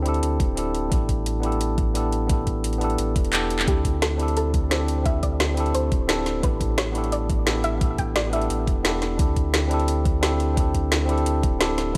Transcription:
Already playing: D2 C4 D4 E4 G4 A4
0.02 C4 D4 E4, closed hi-hat
0.07 G4 A4
0.14 closed hi-hat
0.23 D2, closed hi-hat
0.40 D1, kick, closed hi-hat
0.56 C4 D4 E4 G4 A4, closed hi-hat
0.75 closed hi-hat
0.88 A1 B3 D4 E4, kick, closed hi-hat
0.93 G4 A4
1.09 kick, closed hi-hat
1.26 closed hi-hat
1.40 B3 D4 E4, closed hi-hat
1.45 G4 A4
1.52 closed hi-hat
1.61 closed hi-hat
1.78 kick, closed hi-hat
1.94 B3 D4 E4 G4 A4, closed hi-hat
2.12 closed hi-hat
2.27 B3 D4 E4, kick, closed hi-hat
2.31 G4 A4
2.47 A1, kick, closed hi-hat
2.64 closed hi-hat
2.73 closed hi-hat
2.78 B3 D4 E4, closed hi-hat
2.83 G4 A4
2.90 closed hi-hat
2.98 A1, closed hi-hat
3.16 E1, kick, closed hi-hat
3.25 closed hi-hat
3.32 B3 D4 E4 G4 A4, clap, closed hi-hat
3.50 closed hi-hat
3.59 clap
3.64 D2 C4 D4 E4 G4, kick, closed hi-hat
3.69 G4 A4
3.85 kick, closed hi-hat
4.02 A4, snare, closed hi-hat
4.16 C4 D4 E4, closed hi-hat
4.21 G4 A4
4.28 closed hi-hat
4.37 A4, closed hi-hat
4.54 kick, closed hi-hat
4.70 C4 D4 E4 G4 A4 C5, snare, closed hi-hat
4.88 closed hi-hat
5.03 C4 D4 E4 E5, kick, closed hi-hat
5.07 G4 A4
5.23 D2 D5, kick, closed hi-hat
5.40 snare, closed hi-hat
5.54 C4 D4 E4, closed hi-hat
5.59 G4 A4
5.66 closed hi-hat
5.74 D2 C5, closed hi-hat
5.92 D1, kick, closed hi-hat
6.07 C4 D4 E4 G4 A4, snare, closed hi-hat
6.26 snare, closed hi-hat
6.40 A1 B3 D4 E4 B4, kick, closed hi-hat
6.45 G4 A4
6.61 kick, closed hi-hat
6.78 C#5, snare, closed hi-hat
6.92 B3 D4 E4, closed hi-hat
6.97 G4 A4
7.04 closed hi-hat
7.12 D5, closed hi-hat
7.30 kick, closed hi-hat
7.45 B3 D4 E4 G4 A4, snare, closed hi-hat
7.64 E5, closed hi-hat
7.78 B3 D4 E4, kick, closed hi-hat
7.83 G4 A4
7.98 A1 G5, kick, closed hi-hat
8.16 D5, snare, closed hi-hat
8.30 B3 D4 E4 E5, closed hi-hat
8.34 G4 A4
8.41 closed hi-hat
8.50 A1, closed hi-hat
8.67 E1, kick, closed hi-hat
8.83 B3 D4 E4 G4 A4, snare, closed hi-hat
9.02 snare, closed hi-hat
9.16 D2 C4 D4 E4, kick, closed hi-hat
9.20 G4 A4
9.36 kick, closed hi-hat
9.54 snare, closed hi-hat
9.68 C4 D4 E4, closed hi-hat
9.72 G4 A4
9.80 closed hi-hat
9.88 closed hi-hat
10.05 kick, closed hi-hat
10.21 C4 D4 E4 G4 A4, snare, closed hi-hat
10.40 closed hi-hat
10.54 C4 D4 E4, kick, closed hi-hat
10.58 G4 A4
10.74 D2, kick, closed hi-hat
10.92 snare, closed hi-hat
11.06 C4 D4 E4, closed hi-hat
11.10 G4 A4
11.18 closed hi-hat
11.26 D2, closed hi-hat
11.43 D1, kick, closed hi-hat
11.59 C4 D4 E4 G4 A4, snare, closed hi-hat
11.78 snare, closed hi-hat
11.92 B3 D4

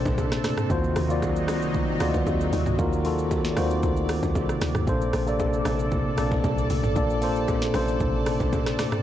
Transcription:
Already playing: A#2 C3 A#3 D4 A4 C5
0.05 A#1, kick, low bongo, shaker
0.18 kick, high bongo, shaker
0.32 cross-stick, snare, shaker
0.44 cross-stick, snare, open hi-hat, low conga, shaker
0.58 cross-stick, mid tom, shaker
0.69 D#2 D#3 F#3 A#3 D#4 F4 F#4 C5, kick, low conga, shaker
0.84 shaker
0.96 D#2, cross-stick, open hi-hat, shaker
1.08 D#3 A#3 F4 F#4 D5, shaker
1.22 kick, high bongo, shaker
1.36 shaker
1.48 C2, cross-stick, open hi-hat, low bongo, shaker
1.62 shaker
1.74 kick, low conga, shaker
1.99 D2 D#3 A#3 F4 F#4 D5, cross-stick, open hi-hat, shaker
2.14 kick, low bongo, shaker
2.27 D#2, kick, high bongo, shaker
2.41 shaker
2.53 D#2, open hi-hat, low conga, shaker
2.66 C2, mid tom, shaker
2.77 D#2 D#3 A#3 F4 F#4 A#4 D5, kick, low conga, shaker
2.93 shaker
3.04 D#3 A#3 F4 F#4 A4, open hi-hat, shaker
3.18 shaker
3.31 kick, high bongo, shaker
3.45 snare, shaker
3.56 D#2 A#3 D#4 F4 F#4 C5, cross-stick, open hi-hat, low bongo, shaker
3.71 shaker
3.83 D2, kick, low conga, shaker
3.97 shaker
4.09 cross-stick, open hi-hat, shaker
4.23 D#2, kick, low bongo, shaker
4.35 C2, kick, high bongo, shaker
4.49 cross-stick, shaker
4.61 D2, cross-stick, snare, open hi-hat, low conga, shaker
4.75 D#2, cross-stick, mid tom, shaker
4.86 A#1 A#2 A#3 D4 A4 C5, kick, low conga, shaker
5.01 shaker
5.13 A#1, cross-stick, open hi-hat, shaker
5.26 C3 A#3 D4 A4 D5, shaker
5.40 kick, high bongo, shaker
5.53 shaker
5.65 A1, cross-stick, open hi-hat, low bongo, shaker
5.79 shaker
5.92 kick, low conga, shaker
6.16 A#1 A#2 A#3 D4 A4 D5, cross-stick, open hi-hat, shaker
6.32 kick, low bongo, shaker
6.44 C2, kick, high bongo, shaker
6.58 shaker
6.70 C2, open hi-hat, low conga, shaker
6.84 A1, mid tom, shaker
6.95 A#1 A#2 A#3 D4 A4 D5, kick, low conga, shaker
7.10 shaker
7.21 A#2 A#3 D4 A4 C5, open hi-hat, shaker
7.36 shaker
7.48 kick, high bongo, shaker
7.62 snare, shaker
7.73 A#1 C3 A#3 C#4 A4 C5, cross-stick, open hi-hat, low bongo, shaker
7.81 D4
7.88 shaker
8.00 A1, kick, low conga, shaker
8.26 cross-stick, open hi-hat, shaker
8.40 A#1, kick, low bongo, shaker
8.53 kick, high bongo, shaker
8.66 cross-stick, snare, shaker
8.79 cross-stick, snare, open hi-hat, low conga, shaker
8.92 cross-stick, mid tom, shaker

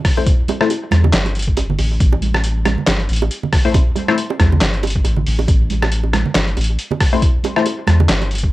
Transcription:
0.05 kick, cross-stick, open hi-hat
0.17 A3 E4 C5, high bongo
0.27 kick, closed hi-hat
0.48 closed hi-hat, high bongo, high conga
0.61 A3 E4 C5, cross-stick
0.70 closed hi-hat, high bongo
0.91 E2, cross-stick, closed hi-hat, high conga
1.04 high bongo, low conga
1.13 G1, snare, clap, closed hi-hat
1.26 closed hi-hat, high bongo
1.35 closed hi-hat
1.39 closed hi-hat
1.43 closed hi-hat
1.48 kick
1.57 closed hi-hat, high bongo
1.70 low conga
1.79 A1, open hi-hat, high bongo
2.00 A1, kick, closed hi-hat
2.13 high bongo
2.22 closed hi-hat, high conga
2.34 cross-stick, high bongo
2.44 closed hi-hat
2.66 cross-stick, closed hi-hat, high bongo, high conga
2.78 low conga
2.87 G1, snare, clap, closed hi-hat, high bongo
3.00 closed hi-hat
3.09 A1, closed hi-hat
3.13 closed hi-hat
3.16 closed hi-hat
3.22 high bongo
3.31 closed hi-hat
3.43 high bongo, low conga
3.53 kick, cross-stick, open hi-hat
3.65 A3 E4 C5
3.74 kick, closed hi-hat, high bongo
3.96 closed hi-hat, high bongo, high conga
4.08 A3 E4 C5, cross-stick
4.18 closed hi-hat
4.30 high bongo
4.40 E2, kick, cross-stick, closed hi-hat, high conga
4.52 high bongo, low conga
4.61 G1, snare, clap, closed hi-hat
4.74 closed hi-hat
4.83 closed hi-hat, high bongo
4.87 closed hi-hat
4.90 closed hi-hat
4.95 kick
5.04 A1, closed hi-hat, high bongo
5.16 low conga
5.26 A1, open hi-hat
5.39 high bongo
5.48 A1, kick, closed hi-hat, high bongo
5.70 closed hi-hat, high conga
5.82 cross-stick, high bongo
5.92 closed hi-hat
6.03 high bongo
6.13 cross-stick, closed hi-hat, high conga
6.26 low conga
6.35 G1, snare, clap, closed hi-hat, high bongo
6.47 closed hi-hat
6.57 A1, closed hi-hat, high bongo
6.61 closed hi-hat
6.64 closed hi-hat
6.79 closed hi-hat
6.91 high bongo, low conga
7.00 kick, cross-stick, open hi-hat
7.13 A3 E4 C5, high bongo
7.22 kick, closed hi-hat
7.44 closed hi-hat, high bongo, high conga
7.56 A3 E4 C5, cross-stick
7.66 closed hi-hat, high bongo
7.87 E2, cross-stick, closed hi-hat, high conga
8.00 high bongo, low conga
8.09 G1, snare, clap, closed hi-hat
8.22 closed hi-hat, high bongo
8.31 closed hi-hat
8.35 closed hi-hat
8.38 closed hi-hat
8.43 kick

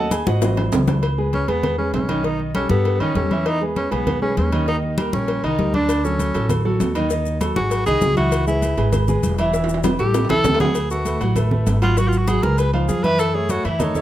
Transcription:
Already playing: D#2 A4 D#5 F#5 A5
0.11 G#4 G#5, cowbell, high conga, low agogo, maracas
0.27 G#1 F#4 C5 D#5 F#5, cowbell, high bongo, high conga, maracas
0.41 E3 F#3 C4, cowbell, high bongo, high timbale, low agogo, maracas
0.57 low bongo, high conga, high timbale, low agogo
0.72 C#2, cowbell, high conga, low timbale, maracas
0.87 low bongo, high conga, low timbale, low agogo, maracas
1.03 cowbell, high conga, low agogo
1.18 G#3 G#4 B4, high conga
1.33 C#4, cowbell, high conga, low agogo
1.48 E2 G#3 B3 G#4 B4, cowbell, high conga, low agogo
1.63 cowbell, high conga, low conga, low agogo
1.78 G#3 C#4 G#4 B4, high conga
1.94 B1 C#4, cowbell, high conga, low timbale, low agogo
2.09 D#3 D#4 D#5, cowbell, high conga, low agogo
2.24 D#3 D#4 D#5, cowbell, high conga
2.39 high conga
2.55 G3 C#4 G4 A4, cowbell, high conga, low agogo
2.69 G2 G3 B3 G4 A4, cowbell, high conga
2.85 cowbell, high conga, low agogo
3.00 F2 D#3 C#4 D#4 D#5, high conga, low agogo
3.15 E2 G3 C#4 G4 A4, cowbell, high conga
3.31 E3 E4 E5, high conga, low agogo
3.46 D#4, cowbell, high conga, low agogo
3.61 G#3 G#4 B4, high conga
3.76 C#4, cowbell, high conga, low agogo
3.91 B1 G#3 B3 G#4 B4, cowbell, high conga, low agogo
4.07 cowbell, high conga, low conga, low agogo
4.22 G#3 C#4 G#4 B4, high conga
4.37 D#2 C#4, cowbell, high conga, low agogo
4.52 D#3 D#4 D#5, cowbell, high conga, low agogo
4.67 D#3 D#4 D#5, cowbell, high conga
4.83 high conga
4.98 G3 G4 A#4, cowbell, high conga, low agogo
5.13 A#1 G3 C#4 G4 A#4, cowbell, high conga
5.28 cowbell, high conga, low agogo
5.43 C2 D#3 D#4 D#5, high conga, low agogo
5.58 D2 G3 G4 A#4, cowbell, high conga
5.73 D3 D4 D5, high conga, low agogo
5.89 cowbell, high conga, low agogo, maracas
6.04 F#3 C#4 F#4 A4, high conga, maracas
6.19 cowbell, high conga, low agogo, maracas
6.34 A1 F#3 F#4 A4, cowbell, high conga, low agogo, maracas
6.49 cowbell, high conga, low conga, low agogo, maracas
6.65 F#3 F#4 A4, high conga
6.80 D#2, cowbell, high conga, low timbale, low agogo, maracas
6.95 D#3 D#4 D#5, cowbell, low agogo, maracas
7.10 D#3 D#4 D#5, cowbell, maracas
7.26 high conga, maracas
7.41 F#3 F#4 A4, cowbell, high conga, low agogo, maracas
7.56 G#1 F#3 F#4 G#4, cowbell, high conga, maracas
7.71 cowbell, high conga, low agogo, maracas
7.86 C2 D#3 D#4 G#4 D#5, high conga, low agogo, maracas
8.01 C#2 F#3 F#4 G#4, cowbell, high conga, low timbale, maracas
8.17 E3 E4 F#4 E5, high conga, low agogo, maracas
8.32 cowbell, high conga, low agogo, maracas
8.47 G#3 E4 G#4 B4, high conga, maracas
8.62 cowbell, high conga, low agogo, maracas
8.77 G#1 G#3 G#4 B4, cowbell, high conga, low agogo, maracas
8.93 cowbell, high conga, low conga, low agogo, maracas
9.08 G#3 G#4 B4, high conga, low conga, maracas
9.23 E1, cowbell, high conga, low agogo, maracas
9.38 E3 E4 E5, cowbell, high conga, low agogo, maracas
9.53 E3 E4 E5, cowbell, high conga, high timbale, maracas
9.64 high timbale
9.69 high conga, maracas
9.74 high timbale
9.84 G3 G4 B4, cowbell, high bongo, high conga, low timbale, low agogo, maracas
9.99 A1 G3 G4 A4, cowbell, maracas
10.14 cowbell, high bongo, low timbale, low agogo, maracas
10.25 low timbale
10.29 B1 E3 E4 A4 E5, low bongo, low conga, low agogo
10.44 D2 G3 G4 A4, cowbell, low bongo, low conga, low timbale, maracas
10.55 low timbale
10.60 F#3 F#4 G#4 F#5, low bongo, low conga, low agogo, maracas
10.65 low timbale
10.75 cowbell, low agogo, maracas
10.90 A3 F#4 A4 B4, high conga, maracas
11.05 A3 A4 B4, cowbell, high conga, low agogo, maracas
11.20 A1 F#3 F#4 F#5, cowbell, high conga, low agogo, maracas
11.36 A3 A4 B4, cowbell, high conga, low conga, low agogo, maracas
11.51 A3 A4 B4, high conga, low conga
11.67 G#1, cowbell, high conga, low timbale, low agogo, maracas
11.82 F#3 F4 F#4 F#5, cowbell, low agogo, maracas
11.97 F#3 F#4 F#5, cowbell, high conga, maracas
12.08 F4
12.12 high conga, maracas
12.18 F#4
12.28 F#3 F#4 G#4 F#5, cowbell, high conga, low agogo, maracas
12.43 C#2 G#3 G#4 A#4 B4, cowbell, high conga, maracas
12.58 B4, cowbell, high conga, low agogo, maracas
12.73 F3 D#4 F4 F5, high conga, low agogo
12.88 F#2 F3 F4 G#4 F5, cowbell, high conga, maracas
13.03 E3 E4 B4 E5, high conga, low agogo, maracas
13.19 A4, cowbell, high conga, low agogo, maracas
13.34 A3 G#4 A4 C#5, high conga
13.49 A3 F#4 A4 C#5, cowbell, high conga, low agogo, maracas
13.64 F#2 E3 E4 E5, cowbell, high conga, low agogo, maracas
13.80 A3 D#4 A4 C#5, cowbell, high conga, low conga, low agogo, maracas
13.95 A3 A4 C#5, high conga, low conga, maracas

